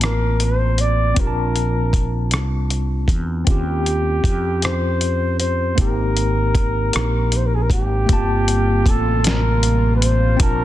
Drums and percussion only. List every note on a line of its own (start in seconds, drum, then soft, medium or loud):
0.01 cross-stick medium
0.01 closed hi-hat medium
0.40 closed hi-hat soft
0.78 closed hi-hat soft
1.16 kick loud
1.16 closed hi-hat medium
1.56 closed hi-hat soft
1.93 kick medium
1.93 closed hi-hat soft
2.31 cross-stick loud
2.31 closed hi-hat medium
2.70 closed hi-hat soft
3.08 kick medium
3.08 closed hi-hat soft
3.47 kick loud
3.47 closed hi-hat medium
3.86 closed hi-hat soft
4.24 kick medium
4.24 closed hi-hat soft
4.62 cross-stick medium
4.62 closed hi-hat medium
5.01 closed hi-hat soft
5.40 closed hi-hat soft
5.78 kick medium
5.78 closed hi-hat medium
6.17 closed hi-hat soft
6.55 kick medium
6.55 closed hi-hat soft
6.93 cross-stick loud
6.93 closed hi-hat medium
7.32 closed hi-hat soft
7.70 kick medium
7.70 closed hi-hat soft
8.09 kick loud
8.09 closed hi-hat medium
8.48 closed hi-hat soft
8.86 kick medium
8.86 closed hi-hat soft
9.24 snare loud
9.24 closed hi-hat medium
9.63 closed hi-hat soft
10.02 closed hi-hat medium
10.40 kick loud
10.40 closed hi-hat medium